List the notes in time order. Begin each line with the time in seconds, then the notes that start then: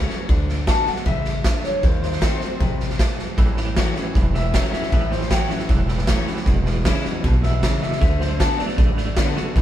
Already playing: E2 E3 A3 C#4 F#4
0.10 muted upright bass stroke, snare
0.29 D2 D3, kick, snare
0.49 snare
0.67 D3 A3 B3 F#4 A5, kick, snare, hi-hat pedal
0.86 B3 F#4 F#5, muted upright bass stroke, snare
0.96 snare
1.06 A1 C#3 E5, kick, snare
1.25 snare
1.44 D3, kick, snare, hi-hat pedal
1.64 C#5, muted upright bass stroke, snare
1.83 D#2 D#3 C5, kick, snare
2.03 C5, snare
2.12 snare
2.21 D#3 A3 C4 F#4, kick, snare, hi-hat pedal
2.40 C4 F#4, muted upright bass stroke, snare
2.60 A1 C3, kick, snare
2.80 snare
2.90 snare
2.99 B2, kick, snare, hi-hat pedal
3.18 muted upright bass stroke, snare
3.38 A1 A2 E3, kick, snare
3.57 A2 E3, snare
3.76 A2 E3 F#3 A3 C#4 F#4, kick, snare, hi-hat pedal
3.96 A2 E3 C#4 F#4, muted upright bass stroke, snare
4.15 E1 E2 A2 E3, kick, snare
4.34 A2 E3 E5, snare
4.54 A2 E3 F#3 A3 C#4 F#4, kick, snare, hi-hat pedal
4.72 A2 E3 C#4 F#4 E5, muted upright bass stroke, snare
4.83 snare
4.92 A1 A2 E3 E5, kick, snare
5.11 A2 E3 C5, snare
5.22 snare
5.31 A2 E3 F#3 A3 C#4 F#4 G5, kick, snare, hi-hat pedal
5.50 A2 E3 C#4 F#4 E5, muted upright bass stroke, snare
5.59 snare
5.69 E1 E2 A2 E3, kick, snare
5.89 A2 E3, snare
5.98 snare
6.07 A2 E3 F#3 A3 C#4 F#4, kick, snare, hi-hat pedal
6.27 A2 E3 C#4 F#4, muted upright bass stroke, snare
6.37 snare
6.46 E1 E2 B2, kick, snare
6.66 E2 B2, snare
6.85 E2 C#3 E3 G#3 C#4 E4, kick, snare, hi-hat pedal
7.04 E2 B2 C#4 E4, muted upright bass stroke, snare
7.24 B1 E2 B2, kick, snare
7.43 E2 B2 E5, snare
7.63 E2 C#3, kick, snare, hi-hat pedal
7.82 E2 B2 E5, muted upright bass stroke, snare
7.92 snare
8.01 D2 D3 A3 E5, kick, snare
8.20 D3 A3 C5, snare
8.40 D3 A3 B3 F#4 A5, kick, snare, hi-hat pedal
8.59 D3 A3 B3 F#4 D5, muted upright bass stroke, snare
8.68 snare
8.78 A1 A2 D3 A3, kick, snare
8.97 D3 A3, snare
9.17 D3 A3 B3 F#4, kick, snare, hi-hat pedal
9.36 D3 A3 B3 F#4, muted upright bass stroke, snare
9.56 A1 A2 E3, kick, snare